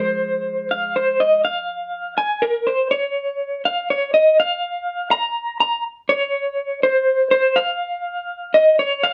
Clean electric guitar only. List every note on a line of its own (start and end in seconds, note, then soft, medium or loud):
0.00 0.67 C5 medium
0.71 0.96 F5 medium
0.96 1.21 C5 medium
1.20 1.44 D#5 medium
1.45 2.14 F5 medium
2.18 2.43 G#5 medium
2.42 2.67 A#4 medium
2.67 2.90 C5 medium
2.91 3.61 C#5 loud
3.65 3.88 F5 medium
3.90 4.13 C#5 loud
4.14 4.37 D#5 medium
4.40 5.11 F5 loud
5.11 5.59 A#5 loud
5.60 5.83 A#5 medium
6.09 6.83 C#5 medium
6.83 7.30 C5 medium
7.31 7.57 C5 loud
7.56 8.57 F5 loud
8.54 8.79 D#5 loud
8.79 9.04 C#5 loud
9.03 9.13 F5 loud